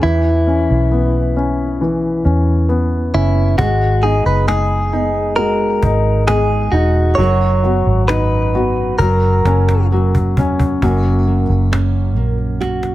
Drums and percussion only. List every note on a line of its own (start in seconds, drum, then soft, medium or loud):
3.59 cajon bass loud
4.03 cajon slap soft
4.48 cajon slap medium
4.92 cajon slap soft
5.38 cajon slap soft
5.83 cajon bass medium
6.28 cajon slap medium
6.73 cajon slap soft
7.18 cajon slap soft
7.64 cajon slap soft
8.09 cajon slap medium
8.54 cajon slap soft
8.76 cajon slap soft
8.99 cajon bass medium
8.99 cajon slap soft
9.45 cajon slap medium
9.69 cajon slap medium
9.91 cajon slap soft
10.15 cajon bass medium
10.37 cajon bass medium
10.60 cajon bass medium
10.82 cajon bass medium
11.28 cajon slap soft
11.73 cajon slap loud
12.16 cajon slap soft
12.38 cajon slap soft
12.61 cajon slap soft
12.61 cajon slap medium
12.83 cajon slap medium